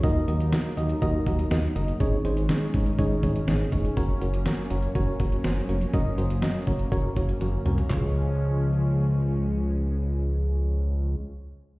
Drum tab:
HH |x-xxx-xxx-xxx-xx|x-xxx-xxx-xxx-xx|x-xxx-xxx-xxx-xx|x-xxx-xxx-xxx-xx|
CP |----------------|----------------|----------------|----------------|
SD |----o-------o---|----o-------o---|----o-------o---|----o-----------|
T1 |----------------|----------------|----------------|------------o---|
T2 |----------------|----------------|----------------|--------------o-|
FT |----------------|----------------|----------------|---------------o|
BD |o-------o-o-----|o-----o-o-o---o-|o-------o-o-----|o-----o-o-o-----|

HH |----------------|----------------|
CP |x---------------|----------------|
SD |----------------|----------------|
T1 |----------------|----------------|
T2 |----------------|----------------|
FT |o---------------|----------------|
BD |o---------------|----------------|